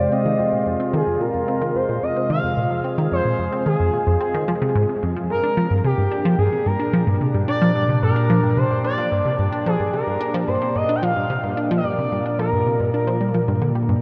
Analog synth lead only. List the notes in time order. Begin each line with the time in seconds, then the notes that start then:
Already playing: D5
0.12 D#5
0.94 G#4
1.21 A#4
1.76 C5
2.03 D#5
2.30 F5
3.12 C5
3.66 G#4
4.21 G#4
5.30 A#4
5.85 G4
6.39 G#4
6.66 A#4
7.48 D5
8.03 A#4
8.58 C5
8.85 D5
9.66 G#4
9.93 A#4
10.48 C5
10.76 D#5
10.95 G5
11.03 F5
11.77 D#5
11.84 D5
12.39 A#4
12.94 A#4